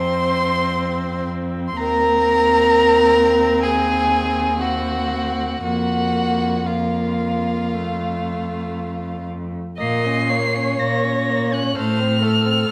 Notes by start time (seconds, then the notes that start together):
Already playing: F2 C4 C5 C6
1.68 C6
1.76 D#2 C4 A#4 A#5
3.62 G#4 G#5
4.60 C4 F#4 F#5
5.64 F2 A#3 F#4 F#5
6.66 A#3 F4 F5
7.74 A3
9.78 A#2 A#3 D#5 C7
10.06 C#4
10.29 A#3 C#5
10.56 C#4
10.79 A#2 A#3 A#6
11.04 C#4
11.30 A#3
11.52 C#4 F#6
11.76 A2 A3 C5 F6
12.00 C4
12.22 A3 A4
12.45 C4
12.68 A2